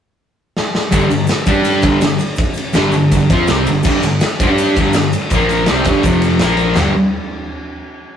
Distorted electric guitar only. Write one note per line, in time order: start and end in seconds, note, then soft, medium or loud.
0.91 1.08 G2 medium
0.91 1.08 D3 loud
0.91 1.10 G3 loud
1.09 1.24 G2 medium
1.09 1.24 D3 medium
1.47 1.83 G3 medium
1.47 1.83 D4 loud
1.47 1.84 G4 loud
1.81 2.00 G2 medium
1.81 2.01 D3 loud
1.81 2.01 G3 medium
2.02 2.17 G2 medium
2.02 2.17 D3 medium
2.73 2.92 G2 medium
2.73 2.92 D3 medium
2.73 2.93 G3 loud
2.94 3.08 G2 medium
2.94 3.08 D3 medium
3.12 3.26 G2 medium
3.12 3.27 D3 medium
3.31 3.48 F3 medium
3.31 3.49 C4 loud
3.31 3.49 F4 medium
3.49 3.66 C3 loud
3.49 3.67 G3 loud
3.49 3.67 C4 loud
3.68 3.82 G2 medium
3.68 3.82 D3 medium
3.84 4.02 G2 loud
3.84 4.03 D3 loud
3.84 4.03 G3 loud
4.05 4.18 G2 medium
4.05 4.19 D3 medium
4.41 4.76 G3 medium
4.41 4.77 D4 medium
4.41 4.77 G4 loud
4.78 4.95 G2 medium
4.78 4.95 D3 medium
4.78 4.96 G3 loud
4.96 5.10 G2 medium
4.96 5.10 D3 medium
5.33 5.67 A#2 loud
5.33 5.68 F3 loud
5.33 5.69 A#3 loud
5.68 5.85 C3 medium
5.68 5.86 G3 loud
5.68 5.86 C4 medium
5.85 6.03 G2 medium
5.85 6.04 D3 medium
5.85 6.05 G3 medium
6.04 6.40 F2 medium
6.04 6.40 C3 medium
6.04 6.41 F3 medium
6.40 6.76 A#2 loud
6.40 6.77 F3 medium
6.40 6.77 A#3 loud
6.77 6.91 G2 medium
6.77 6.92 D3 medium
6.77 6.92 G3 loud